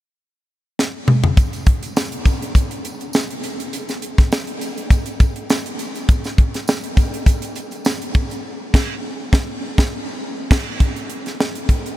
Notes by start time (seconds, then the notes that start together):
0.79 snare
1.08 mid tom
1.24 floor tom
1.37 kick, closed hi-hat, tambourine
1.53 closed hi-hat, tambourine
1.66 kick, closed hi-hat
1.83 closed hi-hat, tambourine
1.96 snare, tambourine
2.12 closed hi-hat
2.26 kick, closed hi-hat, tambourine
2.42 closed hi-hat
2.55 kick, closed hi-hat, tambourine
2.71 closed hi-hat
2.85 closed hi-hat, tambourine
3.00 closed hi-hat, tambourine
3.13 snare, tambourine
3.30 closed hi-hat
3.43 closed hi-hat, tambourine
3.60 closed hi-hat
3.73 closed hi-hat, tambourine
3.89 snare, closed hi-hat, tambourine
4.02 closed hi-hat
4.18 kick, snare, closed hi-hat
4.32 snare, tambourine
4.47 closed hi-hat
4.61 closed hi-hat, tambourine
4.78 closed hi-hat
4.90 kick, closed hi-hat, tambourine
5.06 closed hi-hat, tambourine
5.20 kick, closed hi-hat, tambourine
5.36 closed hi-hat
5.49 snare, tambourine
5.66 closed hi-hat
5.79 closed hi-hat, tambourine
5.95 closed hi-hat, tambourine
6.09 kick, closed hi-hat, tambourine
6.24 snare, closed hi-hat, tambourine
6.38 kick, closed hi-hat
6.54 snare, closed hi-hat, tambourine
6.68 snare, tambourine
6.84 closed hi-hat
6.97 kick, closed hi-hat, tambourine
7.14 closed hi-hat
7.26 kick, closed hi-hat, tambourine
7.42 closed hi-hat, tambourine
7.55 closed hi-hat, tambourine
7.71 closed hi-hat, tambourine
7.85 snare, tambourine
8.02 closed hi-hat
8.14 kick, closed hi-hat, tambourine
8.30 closed hi-hat, tambourine
8.74 kick, snare, crash
9.33 kick, snare
9.78 kick, snare
10.51 kick, snare, crash
10.80 kick, closed hi-hat
10.96 closed hi-hat
11.10 closed hi-hat
11.26 snare, closed hi-hat
11.40 snare
11.55 closed hi-hat
11.69 kick, closed hi-hat
11.86 closed hi-hat